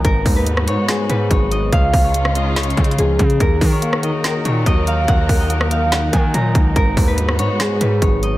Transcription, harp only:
X:1
M:4/4
L:1/16
Q:1/4=143
K:Ebm
V:1 name="Harp"
B3 c3 d2 A2 c2 d2 e2 | f3 d3 e2 d4 A2 z2 | B3 d3 e2 B2 d2 e2 f2 | g3 e3 f2 g2 a2 b4 |
B3 c3 d2 A2 c2 d2 e2 |]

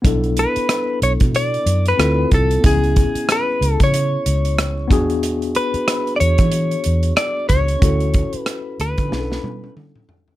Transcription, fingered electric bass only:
X:1
M:4/4
L:1/16
Q:"Swing 16ths" 1/4=93
K:Bdor
V:1 name="Fingered electric bass" clef=bass
B,,,3 z3 B,,, B,,3 F,,2 D,,2 =C,,2 | C,,3 z3 C,, C,3 C,,4 E,,2- | E,,3 z3 E,, E,3 E,,2 z2 C,,2 | D,,3 z3 D,, D, B,,,2 B,,2 z4 |]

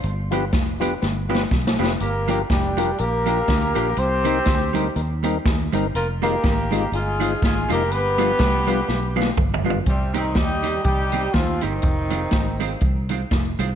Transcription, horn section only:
X:1
M:4/4
L:1/8
Q:"Swing" 1/4=122
K:Cm
V:1 name="Horn section"
z8 | [B,GB] [B,GB] [G,DG]2 [B,GB]4 | [CGc]4 z4 | [B,FB] [B,GB]3 [A,FA]2 [A,FA] [B,GB] |
[=B,G=B]6 z2 | [C,G,C] [E,CE] [G,EG]2 [G,EG]2 [F,CF] [C,E,CE]- | [C,E,CE]4- [C,E,CE] z3 |]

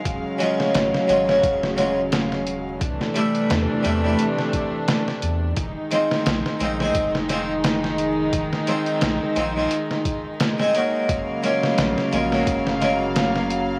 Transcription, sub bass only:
X:1
M:4/4
L:1/8
Q:"Swing 16ths" 1/4=87
K:Fphr
V:1 name="Sub bass" clef=bass
E,,, z A,,, A,,, E,,,4 | C,, z =E,, E,, z3 E,, | F,,, z B,,, B,,, F,,,4 | F,,, z B,,, B,,, z4 |
G,,, z B,,, B,,, G,,,4 |]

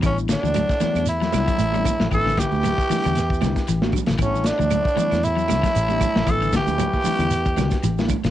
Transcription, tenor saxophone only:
X:1
M:4/4
L:1/8
Q:"Swing 16ths" 1/4=115
K:Amix
V:1 name="Tenor saxophone"
C D3 E4 | A G6 z | C D3 E4 | A G6 z |]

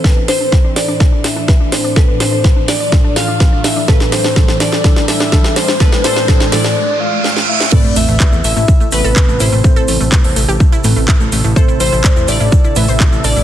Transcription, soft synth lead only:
X:1
M:4/4
L:1/8
Q:1/4=125
K:Am
V:1 name="Soft synth lead"
B c2 d2 e2 c | B c2 d2 f2 e | B c2 d2 e2 c | B c2 d2 f2 e |
d e2 e2 B2 c- | c3 z4 z | A c2 d2 e2 d |]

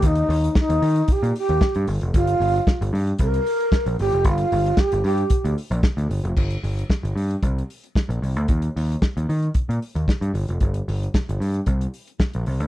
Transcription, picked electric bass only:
X:1
M:4/4
L:1/16
Q:1/4=113
K:Gm
V:1 name="Picked electric bass" clef=bass
E,,2 E,,2 z E,, E,2 z B,, z E,, z G,, G,,, F,,, | G,,,2 G,,,2 z G,,, G,,2 C,,2 z3 B,,, G,,, F,,, | G,,,2 G,,,2 z G,,, G,,2 z D,, z B,,, z D,, G,,, F,,, | G,,,2 G,,,2 z G,,, G,,2 C,,2 z3 B,,, C,, D,, |
E,,2 E,,2 z E,, E,2 z B,, z E,, z G,, G,,, F,,, | G,,,2 G,,,2 z G,,, G,,2 C,,2 z3 B,,, C,, D,, |]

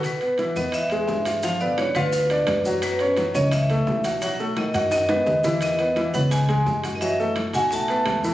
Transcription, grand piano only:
X:1
M:4/4
L:1/8
Q:1/4=172
K:E
V:1 name="Grand piano"
z [B,B] [E,E] [B,B]2 [G,G]2 [=F=f] | [=F,=F] [B,B]2 [F=f]2 [=D=d]2 [^F,^F]- | [F,F] [Cc] [F,F] [Cc]2 [A,A]2 [Ff] | [F,F] [A,A]2 [Ff]2 [B,B]2 [E,E]- |
[E,E] [B,B] [E,E] [B,B]2 [G,G]2 [Ff] | [F,F] [A,A]2 [Ff]2 [B,B]2 [E,E] |]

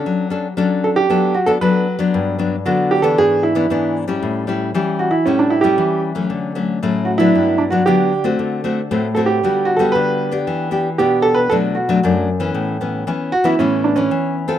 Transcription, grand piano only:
X:1
M:4/4
L:1/16
Q:1/4=115
K:D
V:1 name="Grand piano"
z6 A G3 F A B3 z | z4 F2 G A ^G2 E4 z2 | z6 F E C D E G3 z2 | z6 F E3 D F G3 z |
z6 A G3 F A B3 z | z4 G2 A B A2 F4 z2 | z6 F E C2 D C3 z2 |]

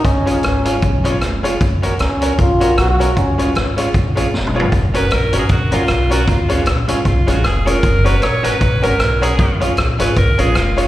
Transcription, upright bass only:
X:1
M:4/4
L:1/8
Q:"Swing" 1/4=154
K:F#
V:1 name="Upright bass" clef=bass
C,,2 G,,,2 B,,,2 E,,,2 | F,,,2 C,,2 A,,,2 B,,,2 | C,,2 G,,,2 A,,,2 E,,,2 | F,,,2 A,,, G,,, A,,, G,,, B,,,2 |
C,,2 A,,, G,,, B,,, A,,, E,,,2 | F,,,2 A,,, G,,, A,,, G,,, B,,,2 | C,,2 A,,, G,,, B,,, A,,, E,,,2 |]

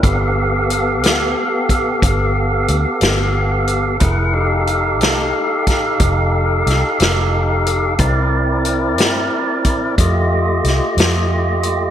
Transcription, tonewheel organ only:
X:1
M:12/8
L:1/8
Q:3/8=60
K:F
V:1 name="Tonewheel organ"
[=B,GAf]12 | [E_AB^f] [_EG=A=f]8- [EGAf]3 | [CEBd]6 [A,FG_e]6 |]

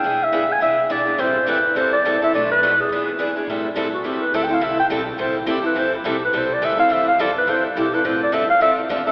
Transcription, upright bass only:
X:1
M:4/4
L:1/8
Q:"Swing" 1/4=210
K:Am
V:1 name="Upright bass" clef=bass
E,,,2 D,,2 C,,2 B,,,2 | A,,,4 G,,,2 A,,,2 | B,,,4 E,,4 | A,,2 G,, z E,,2 D,,2 |
C,,2 B,,,2 A,,,2 G,,,2 | A,,,2 B,,,2 C,,2 D,,2 | E,,2 F,,2 G,,2 B,,2 | A,,2 G,, z F,,2 E,,2 |]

